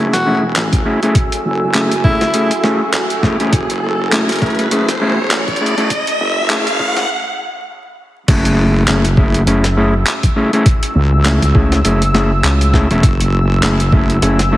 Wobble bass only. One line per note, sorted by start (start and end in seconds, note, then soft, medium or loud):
0.00 0.11 F#1 medium
0.13 0.54 E1 medium
0.56 0.83 A1 medium
1.45 1.89 F#1 loud
1.92 2.32 F#1 medium
3.23 3.51 E1 medium
3.53 4.40 F#1 loud
4.42 4.86 F#1 medium
4.88 5.29 E1 loud
5.31 5.59 A1 loud
6.20 6.64 F#1 loud
6.67 7.07 F#1 loud
8.28 8.85 F#1 loud
8.88 9.45 F#1 loud
10.95 11.39 C#2 loud
11.42 11.53 C#2 medium
12.91 13.01 E1 loud
13.03 13.61 F#1 loud
13.63 14.20 F#1 loud